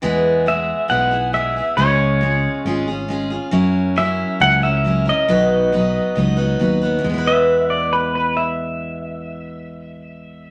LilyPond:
<<
  \new Staff \with { instrumentName = "Pedal steel guitar" } { \time 4/4 \key e \major \tempo 4 = 137 r4 e''4 fis''4 e''4 | cis''2 r2 | r4 e''4 fis''8 e''4 dis''8~ | dis''2. r4 |
r8 e''4 d''8 b'8 b'8 e''4~ | e''1 | }
  \new Staff \with { instrumentName = "Steel-string acoustic guitar" } { \time 4/4 \key e \major <e gis b e' gis'>4 <gis b e' gis'>4 <gis b e' gis'>8 <b e' gis'>8 <gis b e' gis'>8 <b e' gis'>8 | <cis gis cis' eis' gis'>4 <gis cis' eis' gis'>4 <gis cis' eis' gis'>8 <cis' eis' gis'>8 <gis cis' eis' gis'>8 <cis' eis' gis'>8 | <fis cis' e' ais'>4 <fis cis' e' ais'>4 <fis cis' e' ais'>8 <cis' e' ais'>8 <fis cis' e' ais'>8 <cis' e' ais'>8 | <b, dis fis b dis' b'>4 <fis b dis' b'>4 <fis b dis' b'>8 <fis b dis' b'>8 <fis b dis' b'>8 <fis b dis' b'>8 |
<e gis b e' b'>1~ | <e gis b e' b'>1 | }
  \new Staff \with { instrumentName = "Fingered electric bass" } { \clef bass \time 4/4 \key e \major e,2 b,,2 | cis,2 gis,,2 | fis,2 cis,2 | b,,2 cis,4 dis,4 |
e,1~ | e,1 | }
>>